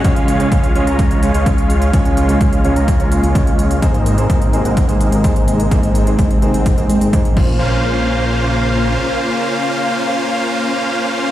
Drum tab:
CC |----------------|----------------|----------------|--------------x-|
HH |xxxxxxxxxxxxxxxx|xxxxxxxxxxxxxxxx|xxxxxxxxxxxxxxxx|xxxxxxxxxxxxxx--|
BD |o---o---o---o---|o---o---o---o---|o---o---o---o---|o---o---o---o-o-|

CC |----------------|----------------|
HH |----------------|----------------|
BD |----------------|----------------|